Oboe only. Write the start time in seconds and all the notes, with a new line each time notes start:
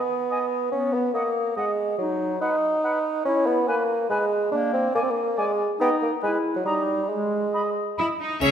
0.31 D#5
1.15 D#5
1.57 D#5
2.41 B4
2.84 B4
3.69 B4
4.10 B4
4.95 D5
5.37 D5
5.81 D#5
6.23 B4
6.67 D#5
7.54 D#5
7.98 D#5